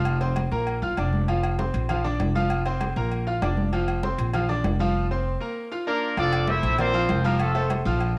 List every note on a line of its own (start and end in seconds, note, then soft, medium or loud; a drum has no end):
0.00 0.46 F1 loud
0.00 0.15 F3 loud
0.00 0.16 F4 loud
0.00 0.16 F5 medium
0.05 high conga soft
0.05 low agogo loud
0.21 0.46 C4 medium
0.21 0.46 C5 medium
0.21 0.46 C6 medium
0.21 high conga soft
0.21 low agogo medium
0.36 high conga loud
0.36 low agogo loud
0.51 0.80 A#1 loud
0.51 0.77 A#3 medium
0.51 0.77 A#4 medium
0.51 0.77 A#5 medium
0.51 high conga soft
0.67 high conga soft
0.67 low agogo medium
0.82 0.96 G1 medium
0.82 0.95 F4 medium
0.82 0.95 F5 medium
0.82 0.95 F6 medium
0.82 high conga soft
0.97 1.68 F1 medium
0.97 1.23 D4 medium
0.97 1.23 D5 medium
0.97 1.23 D6 medium
0.97 high conga soft
0.97 low agogo medium
1.13 high conga medium
1.28 1.53 F3 medium
1.28 1.53 F4 medium
1.28 1.53 F5 medium
1.28 high conga soft
1.28 low agogo medium
1.43 high conga soft
1.43 low agogo loud
1.58 1.84 C4 medium
1.58 1.84 C5 medium
1.58 1.84 C6 medium
1.58 high conga loud
1.74 2.17 A#1 loud
1.74 high conga soft
1.74 low agogo medium
1.89 2.02 F3 medium
1.89 2.02 F4 medium
1.89 2.02 F5 medium
1.89 high conga soft
1.89 low conga medium
1.89 low agogo loud
2.04 2.30 D4 medium
2.04 2.30 D5 medium
2.04 2.30 D6 medium
2.04 high conga soft
2.04 low conga medium
2.20 2.91 F1 loud
2.20 high conga medium
2.20 low timbale medium
2.20 low agogo medium
2.35 2.60 F3 medium
2.35 2.60 F4 medium
2.35 2.61 F5 loud
2.35 high conga medium
2.50 high conga soft
2.50 low agogo loud
2.65 2.91 C4 medium
2.65 2.91 C5 medium
2.65 2.91 C6 medium
2.65 high conga soft
2.65 low agogo medium
2.81 high conga medium
2.81 low agogo loud
2.96 3.39 A#1 loud
2.96 3.21 A#3 medium
2.96 3.22 A#4 medium
2.96 3.22 A#5 medium
2.96 high conga soft
3.11 high conga soft
3.11 low agogo medium
3.27 3.39 F4 medium
3.27 3.39 F5 medium
3.27 3.40 F6 medium
3.27 high conga soft
3.42 4.13 F1 loud
3.42 3.67 D4 medium
3.42 3.67 D5 medium
3.42 3.68 D6 medium
3.42 high conga soft
3.42 low timbale medium
3.42 low agogo loud
3.57 high conga medium
3.72 3.98 F3 medium
3.72 3.98 F4 medium
3.72 3.98 F5 medium
3.72 high conga soft
3.72 low agogo medium
3.88 high conga soft
3.88 low agogo loud
4.03 4.28 C4 medium
4.03 4.29 C5 medium
4.03 4.29 C6 medium
4.03 high conga loud
4.18 4.61 A#1 loud
4.18 high conga soft
4.18 low agogo medium
4.33 4.46 F3 medium
4.33 4.47 F4 medium
4.33 4.47 F5 medium
4.33 high conga soft
4.33 low conga medium
4.33 low agogo loud
4.49 4.74 D4 medium
4.49 4.74 D5 medium
4.49 4.74 D6 medium
4.49 high conga soft
4.49 low conga medium
4.64 5.35 F1 loud
4.64 high conga medium
4.64 low timbale medium
4.64 low agogo medium
4.79 5.05 F3 loud
4.79 5.05 F4 loud
4.79 5.05 F5 loud
4.79 high conga medium
5.11 5.36 C4 medium
5.11 5.36 C5 medium
5.11 5.36 C6 medium
5.40 5.66 A#3 medium
5.40 5.66 A#4 medium
5.40 5.66 A#5 medium
5.72 5.84 F4 medium
5.72 5.84 F5 medium
5.72 5.84 F6 medium
5.87 6.15 A#3 medium
5.87 6.12 D4 medium
5.87 6.16 F4 medium
5.87 6.15 A#4 loud
5.87 6.12 D5 medium
5.87 6.12 D6 medium
6.17 6.60 F1 medium
6.17 6.42 F3 medium
6.17 6.46 D4 loud
6.17 6.43 F4 medium
6.17 6.46 A4 medium
6.17 6.46 D5 loud
6.17 6.43 F5 medium
6.17 high conga soft
6.17 low agogo medium
6.33 high conga soft
6.33 low agogo loud
6.48 6.73 A3 medium
6.48 6.79 E4 loud
6.48 6.73 A4 medium
6.48 6.73 C5 medium
6.48 6.78 C5 loud
6.48 6.79 E5 loud
6.48 high conga loud
6.63 7.06 A#1 loud
6.63 high conga soft
6.63 low agogo medium
6.78 6.91 A#3 medium
6.78 7.22 C4 loud
6.78 7.22 F4 medium
6.78 6.91 A#4 medium
6.78 7.22 C5 loud
6.78 6.92 D5 medium
6.78 high conga soft
6.78 low conga medium
6.78 low agogo loud
6.93 7.19 F3 loud
6.93 7.19 F4 loud
6.93 7.19 F5 loud
6.93 high conga soft
7.09 7.80 F1 loud
7.09 high conga medium
7.09 low timbale medium
7.09 low agogo medium
7.24 7.49 F3 loud
7.24 7.40 A#3 medium
7.24 7.50 F4 loud
7.24 7.40 G4 medium
7.24 7.40 A#4 medium
7.24 7.50 F5 loud
7.24 high conga medium
7.40 7.69 A3 medium
7.40 7.69 F4 medium
7.40 7.69 A4 medium
7.40 high conga soft
7.40 low agogo loud
7.55 7.80 A3 medium
7.55 7.80 A4 medium
7.55 7.80 C5 medium
7.55 high conga soft
7.55 low agogo medium
7.70 high conga loud
7.70 low agogo loud
7.85 8.18 A#1 loud
7.85 8.11 F3 medium
7.85 8.11 F4 loud
7.85 8.11 F5 medium
7.85 high conga soft
8.00 high conga soft
8.00 low agogo medium